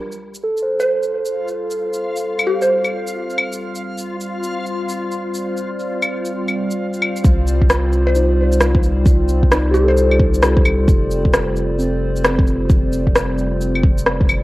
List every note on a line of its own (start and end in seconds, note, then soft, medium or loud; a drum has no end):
0.00 14.43 G3 medium
0.00 7.26 F4 medium
0.00 0.16 A#4 medium
0.00 7.26 F5 medium
0.12 14.43 C4 medium
0.12 shaker soft
0.26 14.43 D5 medium
0.35 shaker soft
0.44 2.01 A4 medium
0.57 14.43 F4 medium
0.57 shaker soft
0.62 14.43 C5 medium
0.62 2.16 C5 soft
0.80 1.03 C5 medium
0.80 shaker soft
1.03 shaker soft
1.25 shaker medium
1.48 shaker soft
1.71 shaker soft
1.94 shaker soft
2.16 shaker medium
2.39 claves medium
2.39 shaker soft
2.47 2.58 G4 medium
2.62 2.93 C5 medium
2.62 shaker soft
2.84 claves soft
2.84 shaker soft
3.07 shaker medium
3.30 shaker soft
3.38 claves medium
3.53 shaker medium
3.75 shaker soft
3.98 shaker medium
4.21 shaker soft
4.43 shaker medium
4.66 shaker soft
4.89 shaker medium
5.12 shaker soft
5.34 shaker medium
5.57 shaker soft
5.80 shaker medium
6.02 claves medium
6.02 shaker soft
6.25 shaker soft
6.48 claves soft
6.48 shaker soft
6.71 shaker soft
6.93 shaker soft
7.02 claves medium
7.16 shaker soft
7.24 10.86 C2 medium
7.24 kick loud
7.24 shaker medium
7.47 shaker medium
7.61 kick medium
7.70 9.28 F4 medium
7.70 cross-stick loud
7.70 shaker medium
7.93 shaker soft
8.07 8.30 C5 medium
8.15 9.50 D#4 medium
8.15 shaker medium
8.52 shaker medium
8.61 cross-stick loud
8.61 shaker medium
8.75 kick loud
8.83 shaker soft
9.06 kick loud
9.06 shaker medium
9.29 shaker medium
9.43 kick medium
9.52 11.07 D#4 medium
9.52 cross-stick loud
9.52 shaker medium
9.71 11.24 G4 medium
9.71 9.86 G4 medium
9.71 shaker soft
9.84 11.34 A4 medium
9.88 10.20 C5 medium
9.97 shaker medium
10.12 claves soft
10.20 kick loud
10.34 shaker medium
10.43 cross-stick loud
10.43 shaker medium
10.57 kick loud
10.65 claves medium
10.65 shaker soft
10.88 14.43 F1 medium
10.88 kick loud
10.88 shaker medium
11.11 shaker medium
11.25 kick medium
11.34 cross-stick loud
11.34 shaker medium
11.56 shaker soft
11.79 13.37 C4 medium
11.79 shaker medium
12.16 shaker medium
12.25 cross-stick loud
12.25 shaker medium
12.39 kick loud
12.47 shaker soft
12.70 kick loud
12.70 shaker medium
12.93 shaker medium
13.07 kick medium
13.16 cross-stick loud
13.16 shaker medium
13.38 shaker soft
13.61 shaker medium
13.75 claves soft
13.83 kick loud
13.98 shaker medium
14.06 cross-stick loud
14.06 shaker medium
14.21 kick loud
14.29 claves medium
14.29 shaker soft